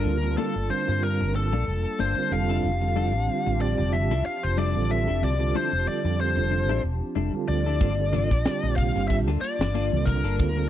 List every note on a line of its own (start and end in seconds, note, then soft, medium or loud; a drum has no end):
0.00 2.27 G3 medium
0.00 2.28 A#3 medium
0.00 2.28 D4 medium
0.00 2.28 F4 medium
0.00 0.37 A#4 medium
0.00 10.69 A5 medium
0.05 0.35 D2 medium
0.05 0.17 D3 medium
0.05 0.17 G3 medium
0.05 0.17 C4 medium
0.05 0.18 F4 medium
0.05 0.18 A4 medium
0.23 0.55 D3 medium
0.23 0.55 G3 medium
0.23 0.55 C4 medium
0.23 0.55 F4 medium
0.23 0.56 A#4 medium
0.23 muted clean electric guitar stroke soft
0.37 0.56 A#3 medium
0.37 0.55 D4 medium
0.37 0.55 F4 medium
0.37 0.71 A4 medium
0.37 0.55 A4 medium
0.55 0.69 G1 medium
0.55 muted clean electric guitar stroke soft
0.69 1.55 D3 medium
0.69 1.55 G3 medium
0.69 1.55 C4 medium
0.69 1.56 F4 medium
0.69 1.56 A#4 medium
0.69 1.04 C5 medium
0.88 1.22 G2 medium
0.88 muted clean electric guitar stroke soft
1.03 1.35 A#4 medium
1.21 1.53 G1 medium
1.21 muted clean electric guitar stroke soft
1.35 2.02 A4 medium
1.35 muted clean electric guitar stroke soft
1.52 1.66 A#1 medium
1.52 1.65 A#3 medium
1.52 1.65 D4 medium
1.52 1.66 F4 medium
1.52 1.66 A4 medium
1.66 1.84 F1 medium
1.66 muted clean electric guitar stroke soft
1.99 2.16 G1 medium
1.99 2.17 A#3 medium
1.99 2.17 D4 medium
1.99 2.16 F4 medium
1.99 2.16 A4 medium
1.99 2.33 C5 medium
2.16 2.30 D3 medium
2.16 2.31 G3 medium
2.16 2.31 C4 medium
2.16 2.31 F4 medium
2.16 2.32 A#4 medium
2.16 muted clean electric guitar stroke soft
2.31 2.61 F1 medium
2.31 2.71 D3 medium
2.31 7.76 F3 medium
2.31 2.71 G3 medium
2.31 7.76 C4 medium
2.31 2.71 C4 medium
2.31 7.76 D4 medium
2.31 7.76 F4 medium
2.31 2.72 F4 medium
2.31 7.76 G4 medium
2.31 2.72 A4 medium
2.31 3.65 F5 loud
2.31 muted clean electric guitar stroke soft
2.49 2.68 D4 soft
2.49 2.68 E4 medium
2.49 2.68 A4 medium
2.64 3.14 F1 medium
2.81 3.13 D3 medium
2.81 3.13 G3 medium
2.81 3.13 C4 medium
2.81 3.13 F4 medium
2.81 3.14 A4 medium
2.81 muted clean electric guitar stroke soft
2.96 3.14 G3 medium
2.96 3.14 D4 medium
2.96 3.13 E4 medium
2.96 3.13 A4 medium
3.14 3.28 A1 medium
3.14 muted clean electric guitar stroke medium
3.27 4.13 D3 medium
3.27 4.13 G3 medium
3.27 4.13 C4 medium
3.27 4.13 F4 medium
3.27 4.14 G4 medium
3.46 3.77 A1 medium
3.46 muted clean electric guitar stroke soft
3.61 3.95 D5 medium
3.78 4.12 F1 medium
3.78 muted clean electric guitar stroke soft
3.93 4.25 E5 medium
3.93 muted clean electric guitar stroke soft
4.11 4.25 C2 medium
4.11 4.24 G3 medium
4.11 4.25 D4 medium
4.11 4.25 E4 medium
4.11 4.25 A4 medium
4.26 4.44 F5 medium
4.26 muted clean electric guitar stroke soft
4.43 4.74 F1 medium
4.43 4.58 C5 medium
4.57 4.76 G3 medium
4.57 4.75 D4 soft
4.57 4.75 E4 medium
4.57 4.74 A4 medium
4.57 4.91 D5 medium
4.75 5.06 A1 medium
4.75 5.07 D3 medium
4.75 5.07 G3 medium
4.75 5.07 C4 medium
4.75 5.07 F4 medium
4.75 5.08 A4 medium
4.75 muted clean electric guitar stroke soft
4.90 5.24 E5 medium
4.90 muted clean electric guitar stroke soft
5.08 5.22 F1 medium
5.08 5.26 D4 soft
5.08 5.26 E4 soft
5.08 5.26 A4 medium
5.21 5.52 C2 medium
5.21 5.34 D3 medium
5.21 5.34 G3 medium
5.21 5.34 C4 medium
5.21 5.34 F4 medium
5.21 5.35 G4 medium
5.21 5.56 D5 medium
5.39 5.71 D3 medium
5.39 5.71 G3 medium
5.39 5.72 C4 medium
5.39 5.72 F4 medium
5.39 5.72 A4 medium
5.39 muted clean electric guitar stroke soft
5.55 5.73 G3 medium
5.55 5.72 D4 medium
5.55 5.72 E4 medium
5.55 5.71 A4 medium
5.55 5.88 C5 medium
5.72 5.86 F1 medium
5.72 muted clean electric guitar stroke soft
5.86 6.72 D3 medium
5.86 6.72 G3 medium
5.86 6.72 C4 medium
5.86 6.72 F4 medium
5.86 6.73 A4 medium
5.86 6.20 D5 medium
6.04 6.38 F2 medium
6.04 muted clean electric guitar stroke soft
6.21 6.81 C5 medium
6.36 6.69 F1 medium
6.36 muted clean electric guitar stroke soft
6.51 muted clean electric guitar stroke soft
6.69 6.83 A1 medium
6.69 6.82 G3 medium
6.69 6.82 D4 medium
6.69 6.82 E4 medium
6.69 6.83 A4 medium
6.83 7.00 E1 medium
6.83 muted clean electric guitar stroke soft
7.15 7.33 F1 medium
7.15 7.34 G3 medium
7.15 7.33 D4 medium
7.15 7.33 E4 medium
7.15 7.32 A4 medium
7.33 7.65 D3 medium
7.33 7.65 G3 medium
7.33 7.65 C4 medium
7.33 7.65 F4 medium
7.33 7.66 A4 medium
7.33 muted clean electric guitar stroke soft
7.33 muted fretless electric bass stroke soft
7.48 7.78 D2 medium
7.48 8.76 D5 loud
7.48 muted clean electric guitar stroke soft
7.66 7.79 D4 soft
7.66 7.80 E4 soft
7.66 7.80 A4 medium
7.79 8.31 G1 loud
7.79 7.92 D3 medium
7.79 10.69 G3 medium
7.79 7.92 G3 medium
7.79 10.69 A#3 loud
7.79 7.98 A#3 medium
7.79 7.93 C4 medium
7.79 10.69 D4 medium
7.79 7.98 D4 medium
7.79 10.69 F4 medium
7.79 7.97 F4 medium
7.79 7.93 F4 medium
7.79 7.97 A4 medium
7.79 7.93 A4 medium
7.79 kick loud
7.79 ride medium
7.98 8.30 D3 medium
7.98 8.30 G3 medium
7.98 8.31 C4 medium
7.98 8.31 F4 medium
7.98 8.31 A4 medium
7.98 muted clean electric guitar stroke soft
8.12 8.31 A#3 medium
8.12 8.30 D4 medium
8.12 8.30 F4 medium
8.12 8.30 A4 medium
8.12 snare soft
8.12 hi-hat pedal medium
8.12 ride medium
8.12 high conga medium
8.12 low conga medium
8.31 8.44 A#1 medium
8.31 muted clean electric guitar stroke soft
8.31 kick medium
8.31 snare soft
8.31 ride medium
8.45 9.30 D3 medium
8.45 9.30 G3 medium
8.45 9.31 C4 medium
8.45 9.31 F4 medium
8.45 9.31 G4 medium
8.45 snare loud
8.45 ride medium
8.63 8.93 A#1 medium
8.63 muted clean electric guitar stroke soft
8.76 9.07 F5 loud
8.76 kick medium
8.76 hi-hat pedal medium
8.76 ride medium
8.76 low conga medium
8.95 9.27 G1 medium
8.95 muted clean electric guitar stroke soft
8.95 snare soft
8.95 ride soft
9.08 9.17 E5 loud
9.08 muted clean electric guitar stroke soft
9.08 kick medium
9.08 ride medium
9.27 9.40 D2 medium
9.27 9.40 A#3 medium
9.27 9.40 D4 medium
9.27 9.41 F4 medium
9.27 9.41 A4 medium
9.27 snare soft
9.41 10.08 D5 medium
9.41 muted clean electric guitar stroke soft
9.41 hi-hat pedal medium
9.41 ride medium
9.59 9.89 G1 medium
9.59 snare loud
9.59 ride soft
9.59 high conga medium
9.74 9.92 A#3 soft
9.74 9.91 D4 soft
9.74 9.91 F4 medium
9.74 9.91 A4 medium
9.74 ride medium
9.92 10.22 C2 medium
9.92 10.23 D3 medium
9.92 10.23 G3 medium
9.92 10.24 C4 medium
9.92 10.24 F4 medium
9.92 10.24 A4 medium
9.92 muted clean electric guitar stroke soft
9.92 high conga medium
10.06 10.66 A#4 medium
10.06 muted clean electric guitar stroke soft
10.06 kick medium
10.06 hi-hat pedal medium
10.06 ride medium
10.06 low conga medium
10.23 10.37 G1 medium
10.23 10.43 D4 soft
10.23 10.43 F4 soft
10.23 10.42 A4 medium
10.23 ride medium
10.38 10.69 D2 loud
10.38 10.50 D3 medium
10.38 10.50 G3 medium
10.38 10.51 C4 medium
10.38 10.51 F4 medium
10.38 10.51 A4 medium
10.38 kick loud
10.38 ride medium
10.56 10.69 D3 medium
10.56 10.69 G3 medium
10.56 10.69 C4 medium
10.56 10.69 F4 medium
10.56 10.69 A4 medium
10.56 muted clean electric guitar stroke soft